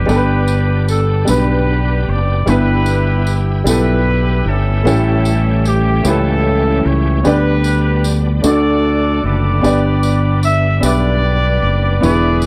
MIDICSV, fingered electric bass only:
0, 0, Header, 1, 2, 480
1, 0, Start_track
1, 0, Key_signature, 1, "major"
1, 0, Tempo, 795756
1, 52, Time_signature, 6, 3, 24, 8
1, 7517, End_track
2, 0, Start_track
2, 0, Title_t, "Fingered electric bass"
2, 0, Program_c, 0, 33
2, 51, Note_on_c, 0, 31, 104
2, 747, Note_off_c, 0, 31, 0
2, 776, Note_on_c, 0, 35, 91
2, 1229, Note_off_c, 0, 35, 0
2, 1257, Note_on_c, 0, 30, 73
2, 1475, Note_off_c, 0, 30, 0
2, 1489, Note_on_c, 0, 31, 104
2, 2185, Note_off_c, 0, 31, 0
2, 2205, Note_on_c, 0, 35, 103
2, 2664, Note_off_c, 0, 35, 0
2, 2687, Note_on_c, 0, 31, 87
2, 2910, Note_off_c, 0, 31, 0
2, 2927, Note_on_c, 0, 33, 109
2, 3625, Note_off_c, 0, 33, 0
2, 3649, Note_on_c, 0, 37, 101
2, 4106, Note_off_c, 0, 37, 0
2, 4136, Note_on_c, 0, 37, 85
2, 4354, Note_off_c, 0, 37, 0
2, 4378, Note_on_c, 0, 38, 101
2, 5071, Note_off_c, 0, 38, 0
2, 5092, Note_on_c, 0, 38, 105
2, 5548, Note_off_c, 0, 38, 0
2, 5572, Note_on_c, 0, 30, 81
2, 5793, Note_off_c, 0, 30, 0
2, 5814, Note_on_c, 0, 31, 106
2, 6510, Note_off_c, 0, 31, 0
2, 6532, Note_on_c, 0, 35, 90
2, 6990, Note_off_c, 0, 35, 0
2, 7014, Note_on_c, 0, 30, 85
2, 7236, Note_off_c, 0, 30, 0
2, 7259, Note_on_c, 0, 28, 93
2, 7517, Note_off_c, 0, 28, 0
2, 7517, End_track
0, 0, End_of_file